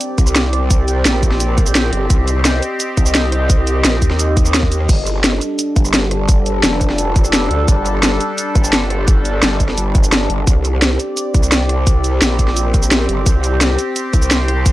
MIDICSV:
0, 0, Header, 1, 4, 480
1, 0, Start_track
1, 0, Tempo, 348837
1, 969, Time_signature, 4, 2, 24, 8
1, 20260, End_track
2, 0, Start_track
2, 0, Title_t, "Analog synth pad"
2, 0, Program_c, 0, 89
2, 0, Note_on_c, 0, 60, 90
2, 0, Note_on_c, 0, 67, 81
2, 0, Note_on_c, 0, 74, 96
2, 2850, Note_off_c, 0, 74, 0
2, 2891, Note_on_c, 0, 75, 95
2, 6674, Note_off_c, 0, 60, 0
2, 6674, Note_off_c, 0, 67, 0
2, 6692, Note_off_c, 0, 75, 0
2, 6729, Note_on_c, 0, 55, 87
2, 6729, Note_on_c, 0, 62, 82
2, 6729, Note_on_c, 0, 69, 101
2, 14354, Note_off_c, 0, 55, 0
2, 14354, Note_off_c, 0, 62, 0
2, 14354, Note_off_c, 0, 69, 0
2, 14408, Note_on_c, 0, 74, 92
2, 14409, Note_on_c, 0, 60, 88
2, 14410, Note_on_c, 0, 67, 80
2, 18210, Note_off_c, 0, 74, 0
2, 18249, Note_on_c, 0, 72, 98
2, 20260, Note_off_c, 0, 60, 0
2, 20260, Note_off_c, 0, 67, 0
2, 20260, Note_off_c, 0, 72, 0
2, 20260, End_track
3, 0, Start_track
3, 0, Title_t, "Wobble bass"
3, 0, Program_c, 1, 39
3, 249, Note_on_c, 1, 36, 90
3, 1430, Note_off_c, 1, 36, 0
3, 1450, Note_on_c, 1, 34, 98
3, 2630, Note_off_c, 1, 34, 0
3, 2651, Note_on_c, 1, 31, 97
3, 2871, Note_off_c, 1, 31, 0
3, 2891, Note_on_c, 1, 36, 98
3, 3591, Note_off_c, 1, 36, 0
3, 4091, Note_on_c, 1, 36, 94
3, 5271, Note_off_c, 1, 36, 0
3, 5290, Note_on_c, 1, 34, 99
3, 5511, Note_off_c, 1, 34, 0
3, 5530, Note_on_c, 1, 39, 92
3, 6710, Note_off_c, 1, 39, 0
3, 6729, Note_on_c, 1, 31, 101
3, 7430, Note_off_c, 1, 31, 0
3, 7929, Note_on_c, 1, 31, 92
3, 9110, Note_off_c, 1, 31, 0
3, 9129, Note_on_c, 1, 29, 102
3, 10310, Note_off_c, 1, 29, 0
3, 10329, Note_on_c, 1, 38, 97
3, 10550, Note_off_c, 1, 38, 0
3, 10569, Note_on_c, 1, 31, 105
3, 11270, Note_off_c, 1, 31, 0
3, 11770, Note_on_c, 1, 31, 88
3, 12951, Note_off_c, 1, 31, 0
3, 12969, Note_on_c, 1, 31, 98
3, 13430, Note_off_c, 1, 31, 0
3, 13450, Note_on_c, 1, 31, 98
3, 14151, Note_off_c, 1, 31, 0
3, 14170, Note_on_c, 1, 31, 95
3, 14390, Note_off_c, 1, 31, 0
3, 14410, Note_on_c, 1, 36, 99
3, 15110, Note_off_c, 1, 36, 0
3, 15610, Note_on_c, 1, 36, 98
3, 16790, Note_off_c, 1, 36, 0
3, 16809, Note_on_c, 1, 34, 100
3, 17990, Note_off_c, 1, 34, 0
3, 18010, Note_on_c, 1, 31, 94
3, 18230, Note_off_c, 1, 31, 0
3, 18249, Note_on_c, 1, 36, 104
3, 18950, Note_off_c, 1, 36, 0
3, 19449, Note_on_c, 1, 36, 90
3, 20260, Note_off_c, 1, 36, 0
3, 20260, End_track
4, 0, Start_track
4, 0, Title_t, "Drums"
4, 9, Note_on_c, 9, 42, 90
4, 9, Note_on_c, 9, 82, 51
4, 146, Note_off_c, 9, 42, 0
4, 146, Note_off_c, 9, 82, 0
4, 249, Note_on_c, 9, 36, 108
4, 249, Note_on_c, 9, 42, 62
4, 249, Note_on_c, 9, 82, 28
4, 370, Note_off_c, 9, 82, 0
4, 370, Note_on_c, 9, 37, 32
4, 370, Note_on_c, 9, 82, 57
4, 387, Note_off_c, 9, 36, 0
4, 387, Note_off_c, 9, 42, 0
4, 489, Note_off_c, 9, 82, 0
4, 489, Note_on_c, 9, 38, 121
4, 489, Note_on_c, 9, 42, 94
4, 489, Note_on_c, 9, 82, 52
4, 507, Note_off_c, 9, 37, 0
4, 627, Note_off_c, 9, 38, 0
4, 627, Note_off_c, 9, 42, 0
4, 627, Note_off_c, 9, 82, 0
4, 729, Note_on_c, 9, 37, 48
4, 729, Note_on_c, 9, 42, 65
4, 867, Note_off_c, 9, 37, 0
4, 867, Note_off_c, 9, 42, 0
4, 969, Note_on_c, 9, 42, 95
4, 969, Note_on_c, 9, 82, 52
4, 970, Note_on_c, 9, 36, 115
4, 1107, Note_off_c, 9, 36, 0
4, 1107, Note_off_c, 9, 42, 0
4, 1107, Note_off_c, 9, 82, 0
4, 1210, Note_on_c, 9, 42, 65
4, 1210, Note_on_c, 9, 82, 31
4, 1348, Note_off_c, 9, 42, 0
4, 1348, Note_off_c, 9, 82, 0
4, 1450, Note_on_c, 9, 38, 120
4, 1450, Note_on_c, 9, 42, 94
4, 1450, Note_on_c, 9, 82, 53
4, 1588, Note_off_c, 9, 38, 0
4, 1588, Note_off_c, 9, 42, 0
4, 1588, Note_off_c, 9, 82, 0
4, 1690, Note_on_c, 9, 36, 60
4, 1690, Note_on_c, 9, 42, 68
4, 1690, Note_on_c, 9, 82, 30
4, 1810, Note_on_c, 9, 38, 37
4, 1827, Note_off_c, 9, 36, 0
4, 1828, Note_off_c, 9, 42, 0
4, 1828, Note_off_c, 9, 82, 0
4, 1930, Note_on_c, 9, 42, 95
4, 1930, Note_on_c, 9, 82, 53
4, 1948, Note_off_c, 9, 38, 0
4, 2068, Note_off_c, 9, 42, 0
4, 2068, Note_off_c, 9, 82, 0
4, 2170, Note_on_c, 9, 36, 103
4, 2171, Note_on_c, 9, 42, 66
4, 2171, Note_on_c, 9, 82, 29
4, 2291, Note_off_c, 9, 82, 0
4, 2291, Note_on_c, 9, 37, 31
4, 2291, Note_on_c, 9, 82, 61
4, 2308, Note_off_c, 9, 36, 0
4, 2308, Note_off_c, 9, 42, 0
4, 2411, Note_off_c, 9, 82, 0
4, 2411, Note_on_c, 9, 38, 120
4, 2411, Note_on_c, 9, 42, 92
4, 2411, Note_on_c, 9, 82, 53
4, 2428, Note_off_c, 9, 37, 0
4, 2549, Note_off_c, 9, 38, 0
4, 2549, Note_off_c, 9, 42, 0
4, 2549, Note_off_c, 9, 82, 0
4, 2651, Note_on_c, 9, 42, 70
4, 2788, Note_off_c, 9, 42, 0
4, 2891, Note_on_c, 9, 36, 114
4, 2891, Note_on_c, 9, 42, 97
4, 2891, Note_on_c, 9, 82, 51
4, 3029, Note_off_c, 9, 36, 0
4, 3029, Note_off_c, 9, 42, 0
4, 3029, Note_off_c, 9, 82, 0
4, 3132, Note_on_c, 9, 42, 74
4, 3132, Note_on_c, 9, 82, 31
4, 3269, Note_off_c, 9, 42, 0
4, 3269, Note_off_c, 9, 82, 0
4, 3372, Note_on_c, 9, 38, 118
4, 3372, Note_on_c, 9, 42, 98
4, 3372, Note_on_c, 9, 82, 53
4, 3492, Note_on_c, 9, 37, 33
4, 3509, Note_off_c, 9, 38, 0
4, 3509, Note_off_c, 9, 42, 0
4, 3509, Note_off_c, 9, 82, 0
4, 3612, Note_on_c, 9, 42, 71
4, 3612, Note_on_c, 9, 82, 29
4, 3629, Note_off_c, 9, 37, 0
4, 3749, Note_off_c, 9, 42, 0
4, 3749, Note_off_c, 9, 82, 0
4, 3851, Note_on_c, 9, 42, 96
4, 3851, Note_on_c, 9, 82, 55
4, 3989, Note_off_c, 9, 42, 0
4, 3989, Note_off_c, 9, 82, 0
4, 4091, Note_on_c, 9, 36, 100
4, 4092, Note_on_c, 9, 42, 70
4, 4092, Note_on_c, 9, 82, 30
4, 4211, Note_off_c, 9, 82, 0
4, 4211, Note_on_c, 9, 37, 32
4, 4211, Note_on_c, 9, 82, 62
4, 4229, Note_off_c, 9, 36, 0
4, 4229, Note_off_c, 9, 42, 0
4, 4331, Note_off_c, 9, 82, 0
4, 4331, Note_on_c, 9, 38, 123
4, 4331, Note_on_c, 9, 42, 96
4, 4331, Note_on_c, 9, 82, 55
4, 4349, Note_off_c, 9, 37, 0
4, 4468, Note_off_c, 9, 38, 0
4, 4468, Note_off_c, 9, 42, 0
4, 4468, Note_off_c, 9, 82, 0
4, 4571, Note_on_c, 9, 37, 49
4, 4571, Note_on_c, 9, 42, 73
4, 4709, Note_off_c, 9, 37, 0
4, 4709, Note_off_c, 9, 42, 0
4, 4811, Note_on_c, 9, 36, 118
4, 4811, Note_on_c, 9, 42, 99
4, 4811, Note_on_c, 9, 82, 50
4, 4948, Note_off_c, 9, 36, 0
4, 4949, Note_off_c, 9, 42, 0
4, 4949, Note_off_c, 9, 82, 0
4, 5051, Note_on_c, 9, 42, 74
4, 5051, Note_on_c, 9, 82, 30
4, 5189, Note_off_c, 9, 42, 0
4, 5189, Note_off_c, 9, 82, 0
4, 5291, Note_on_c, 9, 38, 119
4, 5291, Note_on_c, 9, 42, 106
4, 5291, Note_on_c, 9, 82, 55
4, 5428, Note_off_c, 9, 38, 0
4, 5428, Note_off_c, 9, 42, 0
4, 5428, Note_off_c, 9, 82, 0
4, 5530, Note_on_c, 9, 36, 56
4, 5531, Note_on_c, 9, 42, 73
4, 5531, Note_on_c, 9, 82, 29
4, 5650, Note_on_c, 9, 38, 36
4, 5668, Note_off_c, 9, 36, 0
4, 5668, Note_off_c, 9, 42, 0
4, 5668, Note_off_c, 9, 82, 0
4, 5771, Note_on_c, 9, 42, 95
4, 5771, Note_on_c, 9, 82, 53
4, 5788, Note_off_c, 9, 38, 0
4, 5909, Note_off_c, 9, 42, 0
4, 5909, Note_off_c, 9, 82, 0
4, 6010, Note_on_c, 9, 36, 103
4, 6011, Note_on_c, 9, 42, 72
4, 6011, Note_on_c, 9, 82, 27
4, 6131, Note_off_c, 9, 82, 0
4, 6131, Note_on_c, 9, 37, 33
4, 6131, Note_on_c, 9, 82, 61
4, 6147, Note_off_c, 9, 36, 0
4, 6148, Note_off_c, 9, 42, 0
4, 6251, Note_off_c, 9, 82, 0
4, 6251, Note_on_c, 9, 38, 125
4, 6251, Note_on_c, 9, 42, 99
4, 6251, Note_on_c, 9, 82, 53
4, 6268, Note_off_c, 9, 37, 0
4, 6369, Note_on_c, 9, 36, 60
4, 6389, Note_off_c, 9, 38, 0
4, 6389, Note_off_c, 9, 42, 0
4, 6389, Note_off_c, 9, 82, 0
4, 6490, Note_on_c, 9, 42, 73
4, 6490, Note_on_c, 9, 82, 30
4, 6507, Note_off_c, 9, 36, 0
4, 6610, Note_on_c, 9, 37, 35
4, 6628, Note_off_c, 9, 42, 0
4, 6628, Note_off_c, 9, 82, 0
4, 6729, Note_on_c, 9, 36, 121
4, 6730, Note_on_c, 9, 42, 95
4, 6730, Note_on_c, 9, 49, 77
4, 6730, Note_on_c, 9, 82, 50
4, 6747, Note_off_c, 9, 37, 0
4, 6867, Note_off_c, 9, 36, 0
4, 6868, Note_off_c, 9, 42, 0
4, 6868, Note_off_c, 9, 49, 0
4, 6868, Note_off_c, 9, 82, 0
4, 6969, Note_on_c, 9, 42, 70
4, 6969, Note_on_c, 9, 82, 29
4, 7107, Note_off_c, 9, 42, 0
4, 7107, Note_off_c, 9, 82, 0
4, 7210, Note_on_c, 9, 38, 127
4, 7210, Note_on_c, 9, 42, 97
4, 7210, Note_on_c, 9, 82, 52
4, 7330, Note_on_c, 9, 37, 37
4, 7347, Note_off_c, 9, 38, 0
4, 7347, Note_off_c, 9, 42, 0
4, 7347, Note_off_c, 9, 82, 0
4, 7450, Note_on_c, 9, 42, 70
4, 7450, Note_on_c, 9, 82, 29
4, 7468, Note_off_c, 9, 37, 0
4, 7587, Note_off_c, 9, 42, 0
4, 7587, Note_off_c, 9, 82, 0
4, 7689, Note_on_c, 9, 42, 102
4, 7689, Note_on_c, 9, 82, 50
4, 7827, Note_off_c, 9, 42, 0
4, 7827, Note_off_c, 9, 82, 0
4, 7929, Note_on_c, 9, 36, 107
4, 7929, Note_on_c, 9, 42, 70
4, 7929, Note_on_c, 9, 82, 28
4, 8049, Note_off_c, 9, 82, 0
4, 8049, Note_on_c, 9, 37, 35
4, 8049, Note_on_c, 9, 82, 56
4, 8067, Note_off_c, 9, 36, 0
4, 8067, Note_off_c, 9, 42, 0
4, 8169, Note_off_c, 9, 82, 0
4, 8169, Note_on_c, 9, 38, 126
4, 8169, Note_on_c, 9, 42, 101
4, 8169, Note_on_c, 9, 82, 50
4, 8187, Note_off_c, 9, 37, 0
4, 8307, Note_off_c, 9, 38, 0
4, 8307, Note_off_c, 9, 42, 0
4, 8307, Note_off_c, 9, 82, 0
4, 8409, Note_on_c, 9, 37, 54
4, 8409, Note_on_c, 9, 42, 73
4, 8547, Note_off_c, 9, 37, 0
4, 8547, Note_off_c, 9, 42, 0
4, 8649, Note_on_c, 9, 36, 126
4, 8649, Note_on_c, 9, 42, 98
4, 8649, Note_on_c, 9, 82, 49
4, 8787, Note_off_c, 9, 36, 0
4, 8787, Note_off_c, 9, 42, 0
4, 8787, Note_off_c, 9, 82, 0
4, 8890, Note_on_c, 9, 42, 71
4, 8890, Note_on_c, 9, 82, 27
4, 9028, Note_off_c, 9, 42, 0
4, 9028, Note_off_c, 9, 82, 0
4, 9129, Note_on_c, 9, 38, 126
4, 9129, Note_on_c, 9, 42, 98
4, 9129, Note_on_c, 9, 82, 52
4, 9266, Note_off_c, 9, 38, 0
4, 9266, Note_off_c, 9, 42, 0
4, 9266, Note_off_c, 9, 82, 0
4, 9369, Note_on_c, 9, 36, 65
4, 9369, Note_on_c, 9, 42, 67
4, 9369, Note_on_c, 9, 82, 27
4, 9490, Note_on_c, 9, 38, 37
4, 9507, Note_off_c, 9, 36, 0
4, 9507, Note_off_c, 9, 42, 0
4, 9507, Note_off_c, 9, 82, 0
4, 9610, Note_on_c, 9, 42, 96
4, 9610, Note_on_c, 9, 82, 49
4, 9627, Note_off_c, 9, 38, 0
4, 9747, Note_off_c, 9, 42, 0
4, 9747, Note_off_c, 9, 82, 0
4, 9849, Note_on_c, 9, 36, 107
4, 9850, Note_on_c, 9, 42, 68
4, 9850, Note_on_c, 9, 82, 27
4, 9970, Note_off_c, 9, 82, 0
4, 9970, Note_on_c, 9, 37, 34
4, 9970, Note_on_c, 9, 82, 55
4, 9987, Note_off_c, 9, 36, 0
4, 9987, Note_off_c, 9, 42, 0
4, 10090, Note_off_c, 9, 82, 0
4, 10090, Note_on_c, 9, 38, 127
4, 10090, Note_on_c, 9, 42, 98
4, 10090, Note_on_c, 9, 82, 50
4, 10107, Note_off_c, 9, 37, 0
4, 10228, Note_off_c, 9, 38, 0
4, 10228, Note_off_c, 9, 42, 0
4, 10228, Note_off_c, 9, 82, 0
4, 10330, Note_on_c, 9, 42, 72
4, 10467, Note_off_c, 9, 42, 0
4, 10569, Note_on_c, 9, 36, 125
4, 10570, Note_on_c, 9, 42, 91
4, 10570, Note_on_c, 9, 82, 49
4, 10707, Note_off_c, 9, 36, 0
4, 10708, Note_off_c, 9, 42, 0
4, 10708, Note_off_c, 9, 82, 0
4, 10810, Note_on_c, 9, 42, 69
4, 10810, Note_on_c, 9, 82, 29
4, 10948, Note_off_c, 9, 42, 0
4, 10948, Note_off_c, 9, 82, 0
4, 11050, Note_on_c, 9, 38, 127
4, 11050, Note_on_c, 9, 42, 94
4, 11050, Note_on_c, 9, 82, 49
4, 11171, Note_on_c, 9, 37, 36
4, 11188, Note_off_c, 9, 38, 0
4, 11188, Note_off_c, 9, 42, 0
4, 11188, Note_off_c, 9, 82, 0
4, 11291, Note_on_c, 9, 42, 66
4, 11291, Note_on_c, 9, 82, 27
4, 11308, Note_off_c, 9, 37, 0
4, 11429, Note_off_c, 9, 42, 0
4, 11429, Note_off_c, 9, 82, 0
4, 11531, Note_on_c, 9, 42, 96
4, 11531, Note_on_c, 9, 82, 47
4, 11669, Note_off_c, 9, 42, 0
4, 11669, Note_off_c, 9, 82, 0
4, 11770, Note_on_c, 9, 36, 112
4, 11771, Note_on_c, 9, 42, 64
4, 11771, Note_on_c, 9, 82, 26
4, 11891, Note_off_c, 9, 82, 0
4, 11891, Note_on_c, 9, 37, 32
4, 11891, Note_on_c, 9, 82, 57
4, 11908, Note_off_c, 9, 36, 0
4, 11909, Note_off_c, 9, 42, 0
4, 12010, Note_off_c, 9, 82, 0
4, 12010, Note_on_c, 9, 38, 127
4, 12010, Note_on_c, 9, 42, 92
4, 12010, Note_on_c, 9, 82, 49
4, 12028, Note_off_c, 9, 37, 0
4, 12148, Note_off_c, 9, 38, 0
4, 12148, Note_off_c, 9, 42, 0
4, 12148, Note_off_c, 9, 82, 0
4, 12251, Note_on_c, 9, 37, 49
4, 12251, Note_on_c, 9, 42, 70
4, 12388, Note_off_c, 9, 37, 0
4, 12388, Note_off_c, 9, 42, 0
4, 12490, Note_on_c, 9, 36, 127
4, 12490, Note_on_c, 9, 42, 90
4, 12490, Note_on_c, 9, 82, 50
4, 12628, Note_off_c, 9, 36, 0
4, 12628, Note_off_c, 9, 42, 0
4, 12628, Note_off_c, 9, 82, 0
4, 12731, Note_on_c, 9, 42, 66
4, 12731, Note_on_c, 9, 82, 28
4, 12869, Note_off_c, 9, 42, 0
4, 12869, Note_off_c, 9, 82, 0
4, 12970, Note_on_c, 9, 38, 127
4, 12970, Note_on_c, 9, 42, 89
4, 12970, Note_on_c, 9, 82, 50
4, 13108, Note_off_c, 9, 38, 0
4, 13108, Note_off_c, 9, 42, 0
4, 13108, Note_off_c, 9, 82, 0
4, 13210, Note_on_c, 9, 36, 61
4, 13210, Note_on_c, 9, 42, 64
4, 13210, Note_on_c, 9, 82, 27
4, 13331, Note_on_c, 9, 38, 37
4, 13347, Note_off_c, 9, 36, 0
4, 13348, Note_off_c, 9, 42, 0
4, 13348, Note_off_c, 9, 82, 0
4, 13451, Note_on_c, 9, 42, 89
4, 13451, Note_on_c, 9, 82, 50
4, 13469, Note_off_c, 9, 38, 0
4, 13588, Note_off_c, 9, 42, 0
4, 13588, Note_off_c, 9, 82, 0
4, 13689, Note_on_c, 9, 36, 109
4, 13691, Note_on_c, 9, 42, 64
4, 13691, Note_on_c, 9, 82, 27
4, 13811, Note_off_c, 9, 82, 0
4, 13811, Note_on_c, 9, 37, 34
4, 13811, Note_on_c, 9, 82, 55
4, 13827, Note_off_c, 9, 36, 0
4, 13828, Note_off_c, 9, 42, 0
4, 13931, Note_off_c, 9, 82, 0
4, 13931, Note_on_c, 9, 38, 127
4, 13931, Note_on_c, 9, 42, 91
4, 13931, Note_on_c, 9, 82, 50
4, 13949, Note_off_c, 9, 37, 0
4, 14068, Note_off_c, 9, 38, 0
4, 14068, Note_off_c, 9, 42, 0
4, 14068, Note_off_c, 9, 82, 0
4, 14171, Note_on_c, 9, 42, 64
4, 14308, Note_off_c, 9, 42, 0
4, 14409, Note_on_c, 9, 36, 118
4, 14411, Note_on_c, 9, 42, 93
4, 14411, Note_on_c, 9, 82, 50
4, 14547, Note_off_c, 9, 36, 0
4, 14548, Note_off_c, 9, 42, 0
4, 14548, Note_off_c, 9, 82, 0
4, 14651, Note_on_c, 9, 42, 66
4, 14651, Note_on_c, 9, 82, 30
4, 14788, Note_off_c, 9, 42, 0
4, 14788, Note_off_c, 9, 82, 0
4, 14891, Note_on_c, 9, 38, 122
4, 14891, Note_on_c, 9, 42, 90
4, 14891, Note_on_c, 9, 82, 52
4, 15011, Note_on_c, 9, 37, 33
4, 15028, Note_off_c, 9, 38, 0
4, 15028, Note_off_c, 9, 42, 0
4, 15028, Note_off_c, 9, 82, 0
4, 15130, Note_on_c, 9, 42, 63
4, 15130, Note_on_c, 9, 82, 28
4, 15148, Note_off_c, 9, 37, 0
4, 15268, Note_off_c, 9, 42, 0
4, 15268, Note_off_c, 9, 82, 0
4, 15370, Note_on_c, 9, 42, 89
4, 15370, Note_on_c, 9, 82, 52
4, 15508, Note_off_c, 9, 42, 0
4, 15508, Note_off_c, 9, 82, 0
4, 15609, Note_on_c, 9, 36, 104
4, 15610, Note_on_c, 9, 42, 63
4, 15610, Note_on_c, 9, 82, 29
4, 15729, Note_off_c, 9, 82, 0
4, 15729, Note_on_c, 9, 37, 30
4, 15729, Note_on_c, 9, 82, 58
4, 15747, Note_off_c, 9, 36, 0
4, 15748, Note_off_c, 9, 42, 0
4, 15850, Note_off_c, 9, 82, 0
4, 15850, Note_on_c, 9, 38, 120
4, 15850, Note_on_c, 9, 42, 92
4, 15850, Note_on_c, 9, 82, 51
4, 15867, Note_off_c, 9, 37, 0
4, 15987, Note_off_c, 9, 38, 0
4, 15987, Note_off_c, 9, 42, 0
4, 15987, Note_off_c, 9, 82, 0
4, 16090, Note_on_c, 9, 37, 47
4, 16090, Note_on_c, 9, 42, 67
4, 16227, Note_off_c, 9, 37, 0
4, 16227, Note_off_c, 9, 42, 0
4, 16330, Note_on_c, 9, 36, 114
4, 16330, Note_on_c, 9, 42, 92
4, 16330, Note_on_c, 9, 82, 53
4, 16467, Note_off_c, 9, 36, 0
4, 16468, Note_off_c, 9, 42, 0
4, 16468, Note_off_c, 9, 82, 0
4, 16570, Note_on_c, 9, 42, 67
4, 16570, Note_on_c, 9, 82, 30
4, 16707, Note_off_c, 9, 42, 0
4, 16707, Note_off_c, 9, 82, 0
4, 16810, Note_on_c, 9, 38, 118
4, 16810, Note_on_c, 9, 42, 99
4, 16810, Note_on_c, 9, 82, 54
4, 16948, Note_off_c, 9, 38, 0
4, 16948, Note_off_c, 9, 42, 0
4, 16948, Note_off_c, 9, 82, 0
4, 17050, Note_on_c, 9, 36, 58
4, 17050, Note_on_c, 9, 42, 67
4, 17050, Note_on_c, 9, 82, 29
4, 17170, Note_on_c, 9, 38, 34
4, 17187, Note_off_c, 9, 36, 0
4, 17187, Note_off_c, 9, 42, 0
4, 17187, Note_off_c, 9, 82, 0
4, 17290, Note_on_c, 9, 42, 95
4, 17290, Note_on_c, 9, 82, 55
4, 17308, Note_off_c, 9, 38, 0
4, 17428, Note_off_c, 9, 42, 0
4, 17428, Note_off_c, 9, 82, 0
4, 17529, Note_on_c, 9, 36, 104
4, 17530, Note_on_c, 9, 42, 69
4, 17530, Note_on_c, 9, 82, 31
4, 17650, Note_off_c, 9, 82, 0
4, 17650, Note_on_c, 9, 37, 29
4, 17650, Note_on_c, 9, 82, 61
4, 17667, Note_off_c, 9, 36, 0
4, 17668, Note_off_c, 9, 42, 0
4, 17770, Note_off_c, 9, 82, 0
4, 17770, Note_on_c, 9, 38, 124
4, 17770, Note_on_c, 9, 42, 94
4, 17770, Note_on_c, 9, 82, 55
4, 17788, Note_off_c, 9, 37, 0
4, 17907, Note_off_c, 9, 38, 0
4, 17907, Note_off_c, 9, 42, 0
4, 17907, Note_off_c, 9, 82, 0
4, 18010, Note_on_c, 9, 42, 69
4, 18148, Note_off_c, 9, 42, 0
4, 18249, Note_on_c, 9, 36, 114
4, 18250, Note_on_c, 9, 42, 97
4, 18250, Note_on_c, 9, 82, 53
4, 18387, Note_off_c, 9, 36, 0
4, 18388, Note_off_c, 9, 42, 0
4, 18388, Note_off_c, 9, 82, 0
4, 18489, Note_on_c, 9, 42, 74
4, 18489, Note_on_c, 9, 82, 32
4, 18627, Note_off_c, 9, 42, 0
4, 18627, Note_off_c, 9, 82, 0
4, 18729, Note_on_c, 9, 38, 119
4, 18729, Note_on_c, 9, 42, 103
4, 18729, Note_on_c, 9, 82, 54
4, 18849, Note_on_c, 9, 37, 34
4, 18867, Note_off_c, 9, 38, 0
4, 18867, Note_off_c, 9, 42, 0
4, 18867, Note_off_c, 9, 82, 0
4, 18969, Note_on_c, 9, 42, 70
4, 18969, Note_on_c, 9, 82, 30
4, 18987, Note_off_c, 9, 37, 0
4, 19106, Note_off_c, 9, 42, 0
4, 19106, Note_off_c, 9, 82, 0
4, 19209, Note_on_c, 9, 42, 101
4, 19209, Note_on_c, 9, 82, 52
4, 19346, Note_off_c, 9, 42, 0
4, 19346, Note_off_c, 9, 82, 0
4, 19449, Note_on_c, 9, 36, 98
4, 19449, Note_on_c, 9, 42, 66
4, 19449, Note_on_c, 9, 82, 31
4, 19569, Note_off_c, 9, 82, 0
4, 19569, Note_on_c, 9, 37, 31
4, 19569, Note_on_c, 9, 82, 62
4, 19586, Note_off_c, 9, 36, 0
4, 19587, Note_off_c, 9, 42, 0
4, 19689, Note_off_c, 9, 82, 0
4, 19689, Note_on_c, 9, 38, 118
4, 19689, Note_on_c, 9, 42, 96
4, 19689, Note_on_c, 9, 82, 54
4, 19707, Note_off_c, 9, 37, 0
4, 19827, Note_off_c, 9, 38, 0
4, 19827, Note_off_c, 9, 42, 0
4, 19827, Note_off_c, 9, 82, 0
4, 19929, Note_on_c, 9, 37, 50
4, 19929, Note_on_c, 9, 42, 71
4, 20067, Note_off_c, 9, 37, 0
4, 20067, Note_off_c, 9, 42, 0
4, 20169, Note_on_c, 9, 36, 122
4, 20169, Note_on_c, 9, 42, 95
4, 20169, Note_on_c, 9, 82, 50
4, 20260, Note_off_c, 9, 36, 0
4, 20260, Note_off_c, 9, 42, 0
4, 20260, Note_off_c, 9, 82, 0
4, 20260, End_track
0, 0, End_of_file